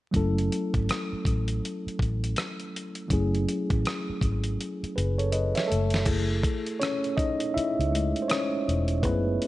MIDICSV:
0, 0, Header, 1, 5, 480
1, 0, Start_track
1, 0, Tempo, 740741
1, 89, Time_signature, 4, 2, 24, 8
1, 6139, End_track
2, 0, Start_track
2, 0, Title_t, "Tine electric piano"
2, 0, Program_c, 0, 4
2, 73, Note_on_c, 0, 54, 60
2, 82, Note_on_c, 0, 57, 57
2, 91, Note_on_c, 0, 61, 58
2, 100, Note_on_c, 0, 64, 56
2, 106, Note_on_c, 0, 69, 67
2, 222, Control_c, 0, 64, 127
2, 1975, Note_off_c, 0, 54, 0
2, 1979, Note_off_c, 0, 57, 0
2, 1984, Note_off_c, 0, 61, 0
2, 1988, Note_off_c, 0, 64, 0
2, 1991, Note_off_c, 0, 69, 0
2, 1998, Note_on_c, 0, 54, 64
2, 2003, Note_on_c, 0, 57, 57
2, 2012, Note_on_c, 0, 61, 58
2, 2021, Note_on_c, 0, 64, 52
2, 2030, Note_on_c, 0, 68, 72
2, 3195, Note_off_c, 0, 68, 0
2, 3212, Note_on_c, 0, 71, 51
2, 3217, Note_on_c, 0, 68, 42
2, 3352, Note_off_c, 0, 71, 0
2, 3354, Note_off_c, 0, 68, 0
2, 3359, Note_on_c, 0, 73, 59
2, 3364, Note_on_c, 0, 69, 46
2, 3445, Note_off_c, 0, 73, 0
2, 3448, Note_off_c, 0, 69, 0
2, 3450, Note_on_c, 0, 75, 54
2, 3452, Note_on_c, 0, 71, 49
2, 3590, Note_off_c, 0, 75, 0
2, 3591, Note_off_c, 0, 71, 0
2, 3598, Note_on_c, 0, 76, 55
2, 3603, Note_on_c, 0, 73, 53
2, 3657, Note_off_c, 0, 54, 0
2, 3660, Note_off_c, 0, 57, 0
2, 3664, Note_off_c, 0, 61, 0
2, 3669, Note_off_c, 0, 64, 0
2, 3680, Note_on_c, 0, 69, 68
2, 3693, Note_on_c, 0, 57, 53
2, 3695, Control_c, 0, 64, 0
2, 3784, Control_c, 0, 64, 127
2, 3825, Note_off_c, 0, 76, 0
2, 3828, Note_off_c, 0, 73, 0
2, 3919, Note_off_c, 0, 57, 0
2, 3923, Note_on_c, 0, 68, 53
2, 3927, Note_on_c, 0, 57, 49
2, 3931, Note_on_c, 0, 64, 52
2, 3938, Control_c, 0, 64, 0
2, 4063, Control_c, 0, 64, 127
2, 4404, Note_on_c, 0, 73, 84
2, 4414, Note_on_c, 0, 61, 70
2, 4426, Note_off_c, 0, 69, 0
2, 4635, Note_off_c, 0, 61, 0
2, 4645, Note_on_c, 0, 75, 88
2, 4654, Note_off_c, 0, 73, 0
2, 4655, Note_on_c, 0, 63, 66
2, 4875, Note_off_c, 0, 63, 0
2, 4887, Note_off_c, 0, 64, 0
2, 4888, Note_on_c, 0, 76, 87
2, 4894, Note_off_c, 0, 75, 0
2, 4895, Note_on_c, 0, 64, 63
2, 5126, Note_off_c, 0, 57, 0
2, 5130, Note_off_c, 0, 64, 0
2, 5131, Note_on_c, 0, 56, 44
2, 5134, Note_on_c, 0, 57, 37
2, 5137, Note_on_c, 0, 64, 41
2, 5308, Note_off_c, 0, 76, 0
2, 5328, Note_on_c, 0, 72, 60
2, 5346, Note_off_c, 0, 56, 0
2, 5347, Note_off_c, 0, 57, 0
2, 5349, Note_off_c, 0, 64, 0
2, 5366, Note_off_c, 0, 72, 0
2, 5367, Note_on_c, 0, 73, 71
2, 5377, Note_on_c, 0, 61, 56
2, 5820, Note_off_c, 0, 68, 0
2, 5822, Note_off_c, 0, 73, 0
2, 5827, Note_off_c, 0, 61, 0
2, 5850, Note_on_c, 0, 68, 52
2, 5851, Note_on_c, 0, 71, 81
2, 5853, Note_on_c, 0, 57, 43
2, 5857, Note_on_c, 0, 64, 58
2, 5859, Note_on_c, 0, 59, 58
2, 6139, Note_off_c, 0, 57, 0
2, 6139, Note_off_c, 0, 59, 0
2, 6139, Note_off_c, 0, 64, 0
2, 6139, Note_off_c, 0, 68, 0
2, 6139, Note_off_c, 0, 71, 0
2, 6139, End_track
3, 0, Start_track
3, 0, Title_t, "Fingered electric bass"
3, 0, Program_c, 1, 33
3, 98, Note_on_c, 1, 30, 79
3, 312, Note_off_c, 1, 30, 0
3, 489, Note_on_c, 1, 32, 72
3, 567, Note_off_c, 1, 32, 0
3, 818, Note_on_c, 1, 33, 68
3, 1033, Note_off_c, 1, 33, 0
3, 1301, Note_on_c, 1, 33, 68
3, 1514, Note_off_c, 1, 33, 0
3, 2018, Note_on_c, 1, 30, 83
3, 2232, Note_off_c, 1, 30, 0
3, 2407, Note_on_c, 1, 33, 66
3, 2486, Note_off_c, 1, 33, 0
3, 2739, Note_on_c, 1, 32, 62
3, 2953, Note_off_c, 1, 32, 0
3, 3224, Note_on_c, 1, 30, 80
3, 3579, Note_off_c, 1, 30, 0
3, 3705, Note_on_c, 1, 30, 77
3, 3916, Note_off_c, 1, 30, 0
3, 3934, Note_on_c, 1, 30, 82
3, 4150, Note_off_c, 1, 30, 0
3, 5050, Note_on_c, 1, 37, 66
3, 5263, Note_off_c, 1, 37, 0
3, 5626, Note_on_c, 1, 28, 72
3, 5860, Note_off_c, 1, 28, 0
3, 5860, Note_on_c, 1, 30, 81
3, 6074, Note_off_c, 1, 30, 0
3, 6139, End_track
4, 0, Start_track
4, 0, Title_t, "Muted fingered electric bass strokes"
4, 730, Note_on_c, 9, 29, 40
4, 795, Note_off_c, 9, 29, 0
4, 1209, Note_on_c, 9, 29, 36
4, 1274, Note_off_c, 9, 29, 0
4, 2653, Note_on_c, 9, 29, 35
4, 2718, Note_off_c, 9, 29, 0
4, 3131, Note_on_c, 9, 29, 40
4, 3195, Note_off_c, 9, 29, 0
4, 4902, Note_on_c, 9, 29, 41
4, 4967, Note_off_c, 9, 29, 0
4, 6139, End_track
5, 0, Start_track
5, 0, Title_t, "Drums"
5, 90, Note_on_c, 9, 36, 70
5, 92, Note_on_c, 9, 42, 63
5, 155, Note_off_c, 9, 36, 0
5, 157, Note_off_c, 9, 42, 0
5, 249, Note_on_c, 9, 42, 29
5, 314, Note_off_c, 9, 42, 0
5, 339, Note_on_c, 9, 42, 52
5, 404, Note_off_c, 9, 42, 0
5, 479, Note_on_c, 9, 36, 73
5, 479, Note_on_c, 9, 42, 38
5, 544, Note_off_c, 9, 36, 0
5, 544, Note_off_c, 9, 42, 0
5, 578, Note_on_c, 9, 42, 68
5, 588, Note_on_c, 9, 37, 89
5, 642, Note_off_c, 9, 42, 0
5, 653, Note_off_c, 9, 37, 0
5, 811, Note_on_c, 9, 36, 76
5, 819, Note_on_c, 9, 42, 52
5, 876, Note_off_c, 9, 36, 0
5, 884, Note_off_c, 9, 42, 0
5, 958, Note_on_c, 9, 42, 44
5, 1023, Note_off_c, 9, 42, 0
5, 1070, Note_on_c, 9, 42, 67
5, 1135, Note_off_c, 9, 42, 0
5, 1219, Note_on_c, 9, 42, 27
5, 1284, Note_off_c, 9, 42, 0
5, 1291, Note_on_c, 9, 36, 77
5, 1311, Note_on_c, 9, 42, 49
5, 1356, Note_off_c, 9, 36, 0
5, 1376, Note_off_c, 9, 42, 0
5, 1450, Note_on_c, 9, 42, 45
5, 1515, Note_off_c, 9, 42, 0
5, 1531, Note_on_c, 9, 42, 66
5, 1543, Note_on_c, 9, 37, 86
5, 1596, Note_off_c, 9, 42, 0
5, 1607, Note_off_c, 9, 37, 0
5, 1682, Note_on_c, 9, 42, 29
5, 1747, Note_off_c, 9, 42, 0
5, 1791, Note_on_c, 9, 42, 56
5, 1856, Note_off_c, 9, 42, 0
5, 1913, Note_on_c, 9, 42, 40
5, 1978, Note_off_c, 9, 42, 0
5, 2010, Note_on_c, 9, 36, 80
5, 2012, Note_on_c, 9, 42, 66
5, 2075, Note_off_c, 9, 36, 0
5, 2077, Note_off_c, 9, 42, 0
5, 2168, Note_on_c, 9, 42, 26
5, 2233, Note_off_c, 9, 42, 0
5, 2259, Note_on_c, 9, 42, 59
5, 2323, Note_off_c, 9, 42, 0
5, 2399, Note_on_c, 9, 36, 79
5, 2400, Note_on_c, 9, 42, 38
5, 2464, Note_off_c, 9, 36, 0
5, 2464, Note_off_c, 9, 42, 0
5, 2498, Note_on_c, 9, 42, 63
5, 2508, Note_on_c, 9, 37, 90
5, 2563, Note_off_c, 9, 42, 0
5, 2573, Note_off_c, 9, 37, 0
5, 2730, Note_on_c, 9, 36, 75
5, 2737, Note_on_c, 9, 42, 54
5, 2795, Note_off_c, 9, 36, 0
5, 2802, Note_off_c, 9, 42, 0
5, 2874, Note_on_c, 9, 42, 48
5, 2939, Note_off_c, 9, 42, 0
5, 2984, Note_on_c, 9, 42, 69
5, 3049, Note_off_c, 9, 42, 0
5, 3135, Note_on_c, 9, 42, 29
5, 3200, Note_off_c, 9, 42, 0
5, 3226, Note_on_c, 9, 42, 54
5, 3291, Note_off_c, 9, 42, 0
5, 3366, Note_on_c, 9, 42, 43
5, 3430, Note_off_c, 9, 42, 0
5, 3450, Note_on_c, 9, 42, 69
5, 3515, Note_off_c, 9, 42, 0
5, 3597, Note_on_c, 9, 42, 30
5, 3612, Note_on_c, 9, 38, 56
5, 3662, Note_off_c, 9, 42, 0
5, 3677, Note_off_c, 9, 38, 0
5, 3704, Note_on_c, 9, 42, 51
5, 3769, Note_off_c, 9, 42, 0
5, 3825, Note_on_c, 9, 42, 39
5, 3849, Note_on_c, 9, 38, 59
5, 3890, Note_off_c, 9, 42, 0
5, 3914, Note_off_c, 9, 38, 0
5, 3923, Note_on_c, 9, 49, 75
5, 3927, Note_on_c, 9, 36, 83
5, 3927, Note_on_c, 9, 42, 75
5, 3988, Note_off_c, 9, 49, 0
5, 3991, Note_off_c, 9, 36, 0
5, 3992, Note_off_c, 9, 42, 0
5, 4169, Note_on_c, 9, 36, 86
5, 4175, Note_on_c, 9, 42, 54
5, 4234, Note_off_c, 9, 36, 0
5, 4239, Note_off_c, 9, 42, 0
5, 4319, Note_on_c, 9, 42, 36
5, 4384, Note_off_c, 9, 42, 0
5, 4416, Note_on_c, 9, 42, 63
5, 4426, Note_on_c, 9, 37, 85
5, 4481, Note_off_c, 9, 42, 0
5, 4491, Note_off_c, 9, 37, 0
5, 4563, Note_on_c, 9, 42, 29
5, 4628, Note_off_c, 9, 42, 0
5, 4650, Note_on_c, 9, 36, 87
5, 4659, Note_on_c, 9, 42, 56
5, 4715, Note_off_c, 9, 36, 0
5, 4724, Note_off_c, 9, 42, 0
5, 4796, Note_on_c, 9, 42, 52
5, 4861, Note_off_c, 9, 42, 0
5, 4909, Note_on_c, 9, 42, 72
5, 4974, Note_off_c, 9, 42, 0
5, 5058, Note_on_c, 9, 42, 32
5, 5123, Note_off_c, 9, 42, 0
5, 5152, Note_on_c, 9, 42, 63
5, 5216, Note_off_c, 9, 42, 0
5, 5287, Note_on_c, 9, 42, 44
5, 5352, Note_off_c, 9, 42, 0
5, 5375, Note_on_c, 9, 42, 73
5, 5387, Note_on_c, 9, 37, 98
5, 5440, Note_off_c, 9, 42, 0
5, 5452, Note_off_c, 9, 37, 0
5, 5632, Note_on_c, 9, 42, 55
5, 5697, Note_off_c, 9, 42, 0
5, 5754, Note_on_c, 9, 42, 38
5, 5819, Note_off_c, 9, 42, 0
5, 5852, Note_on_c, 9, 36, 83
5, 5855, Note_on_c, 9, 42, 71
5, 5917, Note_off_c, 9, 36, 0
5, 5920, Note_off_c, 9, 42, 0
5, 6102, Note_on_c, 9, 42, 56
5, 6139, Note_off_c, 9, 42, 0
5, 6139, End_track
0, 0, End_of_file